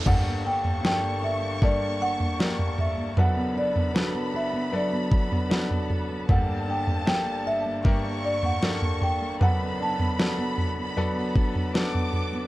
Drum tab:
CC |x---------------|----------------|----------------|----------------|
SD |----o-------o---|----o-------o---|----o-------o---|----o-------o---|
FT |o--o-------o-oo-|o--o-------o-oo-|o--o-------o-oo-|o--o--o-o--o-oo-|
BD |o-------o-------|----------o-----|o-------o-------|----------o-----|